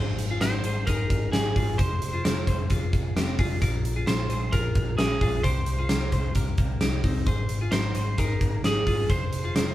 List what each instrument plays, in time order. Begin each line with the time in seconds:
Already playing: picked electric bass G#1, clean electric guitar G#4 C5
0.18 picked electric bass G#1, closed hi-hat
0.31 clean electric guitar F4 G#4
0.41 picked electric bass G#1, clean electric guitar D#4 A#4, lead electric guitar C5, snare, closed hi-hat
0.64 picked electric bass G#1, clean electric guitar G#4 C5, closed hi-hat
0.87 picked electric bass G#1, clean electric guitar D#4 G#4, lead electric guitar A#4, kick, closed hi-hat
1.10 picked electric bass G#1, kick, closed hi-hat
1.32 picked electric bass G#1, clean electric guitar D#4 G4, lead electric guitar G#4, snare, closed hi-hat
1.56 picked electric bass G#1, clean electric guitar F4 G#4, kick, open hi-hat
1.78 picked electric bass F1, clean electric guitar G#4 C5, lead electric guitar C5, kick, closed hi-hat
2.02 picked electric bass F1, closed hi-hat
2.13 clean electric guitar F4 G#4
2.24 picked electric bass F1, clean electric guitar F4 A#4, snare, closed hi-hat
2.47 picked electric bass F1, clean electric guitar G#4 C5, kick, closed hi-hat
2.70 picked electric bass F1, clean electric guitar F4 G#4, kick, closed hi-hat
2.93 picked electric bass F1, kick, closed hi-hat
3.16 picked electric bass F1, clean electric guitar C4 G4, snare, closed hi-hat
3.39 picked electric bass F1, clean electric guitar F4 G#4, kick, open hi-hat
3.61 picked electric bass A#1, clean electric guitar F4 A#4, kick, closed hi-hat
3.84 picked electric bass A#1, closed hi-hat
3.96 clean electric guitar F4 G#4
4.07 picked electric bass A#1, clean electric guitar F4 A#4, lead electric guitar C5, snare, closed hi-hat
4.29 picked electric bass A#1, clean electric guitar G#4 C5, closed hi-hat
4.52 picked electric bass A#1, clean electric guitar F4 G#4, lead electric guitar A#4, kick, closed hi-hat
4.75 picked electric bass A#1, kick, closed hi-hat
4.98 picked electric bass A#1, clean electric guitar C#4 G4, lead electric guitar G#4, snare, closed hi-hat
5.21 picked electric bass A#1, clean electric guitar F4 G#4, kick, open hi-hat
5.43 picked electric bass C2, clean electric guitar G4 C5, lead electric guitar C5, kick, closed hi-hat
5.66 picked electric bass C2, closed hi-hat
5.79 clean electric guitar F4 G#4
5.89 picked electric bass C2, clean electric guitar G4 A#4, snare, closed hi-hat
6.12 picked electric bass C2, clean electric guitar G#4 C5, kick, closed hi-hat
6.35 picked electric bass C2, clean electric guitar G4 A#4, kick, closed hi-hat
6.58 picked electric bass C2, kick, closed hi-hat
6.81 picked electric bass C2, clean electric guitar D#4 G4, snare, closed hi-hat
7.04 picked electric bass C2, clean electric guitar C4 D#4, kick, open hi-hat
7.26 picked electric bass G#1, clean electric guitar G#4 C5, kick, closed hi-hat
7.49 picked electric bass G#1, closed hi-hat
7.61 clean electric guitar F4 G#4
7.72 picked electric bass G#1, clean electric guitar D#4 A#4, lead electric guitar C5, snare, closed hi-hat
7.95 picked electric bass G#1, clean electric guitar G#4 C5, closed hi-hat
8.18 picked electric bass G#1, clean electric guitar D#4 G#4, lead electric guitar A#4, kick, closed hi-hat
8.41 picked electric bass G#1, kick, closed hi-hat
8.63 picked electric bass G#1, clean electric guitar D#4 G4, lead electric guitar G#4, snare, closed hi-hat
8.87 picked electric bass G#1, clean electric guitar F4 G#4, kick, open hi-hat
9.10 picked electric bass F1, clean electric guitar G#4 C5, lead electric guitar C5, kick, closed hi-hat
9.32 picked electric bass F1, closed hi-hat
9.44 clean electric guitar F4 G#4
9.55 picked electric bass F1, clean electric guitar F4 A#4, snare, closed hi-hat